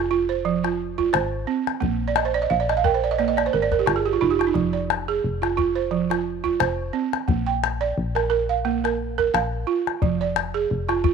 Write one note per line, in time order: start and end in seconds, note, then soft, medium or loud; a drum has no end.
0.00 1.11 F1 loud
0.11 0.45 F4 medium
0.29 0.79 C5 medium
0.45 0.80 F3 medium
0.64 0.97 F4 medium
0.64 calabash click soft
0.98 1.33 F4 medium
0.98 calabash thump soft
1.13 1.46 G#1 medium
1.13 1.66 C5 medium
1.13 calabash click medium
1.47 1.82 C4 medium
1.67 calabash click soft
1.80 2.47 A#1 medium
1.80 2.16 A#3 medium
1.80 calabash thump medium
2.08 2.24 D5 medium
2.16 2.34 D#5 medium
2.16 calabash click medium
2.25 2.41 C5 medium
2.34 2.49 D5 medium
2.42 2.58 D#5 medium
2.50 3.49 A#1 loud
2.50 2.68 F5 medium
2.60 2.76 D5 medium
2.69 2.84 D#5 medium
2.69 calabash click soft
2.77 2.93 F5 medium
2.84 3.19 A#4 medium
2.84 3.02 G5 medium
2.84 calabash thump medium
2.94 3.10 C5 medium
3.04 3.17 D5 medium
3.11 3.27 D#5 medium
3.19 3.53 A#3 medium
3.19 3.36 D5 medium
3.19 calabash click soft
3.28 3.44 D#5 medium
3.37 3.52 D5 medium
3.37 calabash click soft
3.46 3.62 C5 medium
3.53 3.84 G#1 medium
3.53 3.71 A#4 medium
3.62 3.78 D5 medium
3.72 3.86 A#4 medium
3.72 calabash thump soft
3.79 3.95 G4 medium
3.86 4.18 G1 medium
3.86 4.04 F4 medium
3.86 calabash click medium
3.96 4.12 G#4 medium
4.06 4.20 G4 medium
4.13 4.20 F4 medium
4.21 4.52 F1 medium
4.21 4.39 D#4 medium
4.21 4.38 F4 medium
4.30 4.46 G4 medium
4.39 4.54 F4 medium
4.39 calabash click medium
4.47 4.63 D#4 medium
4.54 5.20 F1 medium
4.54 4.89 F3 medium
4.54 calabash thump medium
4.73 5.23 D5 medium
4.90 calabash click medium
5.08 5.42 G#4 medium
5.24 6.57 F1 medium
5.42 5.56 F4 medium
5.42 calabash click soft
5.57 5.92 F4 medium
5.57 calabash thump medium
5.75 6.25 C5 medium
5.91 6.26 F3 medium
6.10 6.43 F4 medium
6.10 calabash click medium
6.44 6.78 F4 medium
6.44 calabash thump medium
6.60 6.92 F1 medium
6.60 7.13 C5 medium
6.60 calabash click medium
6.93 7.28 C4 medium
7.13 calabash click soft
7.28 7.93 A#1 loud
7.28 7.62 A#3 medium
7.28 calabash thump medium
7.46 7.96 G5 medium
7.64 calabash click medium
7.81 8.15 D5 medium
7.98 9.30 A#1 loud
8.15 8.29 A#4 medium
8.15 calabash click soft
8.30 8.64 A#4 medium
8.49 8.99 F5 medium
8.65 8.99 A#3 medium
8.84 9.17 A#4 medium
8.84 calabash click soft
9.18 9.52 A#4 medium
9.18 calabash thump soft
9.34 9.65 A#1 medium
9.34 9.87 F5 medium
9.34 calabash click medium
9.67 10.01 F4 medium
9.87 calabash click soft
10.02 10.66 F1 medium
10.02 10.36 F3 medium
10.02 calabash thump medium
10.21 10.70 D5 medium
10.36 calabash click medium
10.54 10.89 G#4 medium
10.71 11.14 F1 loud
10.89 11.03 F4 medium
10.89 calabash click soft
11.04 11.14 F4 medium
11.04 calabash thump medium